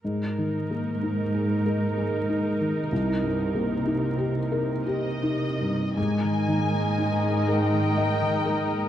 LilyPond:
<<
  \new Staff \with { instrumentName = "Violin section" } { \time 3/4 \key aes \major \tempo 4 = 62 r2. | r2 ees''4 | aes''4. g''4. | }
  \new Staff \with { instrumentName = "Violin section" } { \time 3/4 \key aes \major r2. | r2. | <bes' ees''>2. | }
  \new Staff \with { instrumentName = "Felt piano" } { \time 3/4 \key aes \major \tuplet 3/2 { aes,8 ees8 bes8 ees'8 aes'8 bes'8 aes'8 ees'8 ees8 } | \tuplet 3/2 { c,8 g,8 bes8 ees'8 g'8 bes'8 g'8 ees'8 g,8 } | aes,8 ees8 ees'8 bes'8 ees''8 bes'8 | }
  \new Staff \with { instrumentName = "Viola section" } { \time 3/4 \key aes \major <ees' bes'>2.~ | <ees' bes'>2. | <aes ees'>2. | }
  \new Staff \with { instrumentName = "Harp" } { \time 3/4 \key aes \major r2. | r2. | aes,16 ees16 bes16 ees'16 des'16 ees'16 bes16 ees16 bes16 ees16 bes16 bes'16 | }
  \new Staff \with { instrumentName = "Cello section" } { \clef bass \time 3/4 \key aes \major aes,2. | c2. | aes,2. | }
>>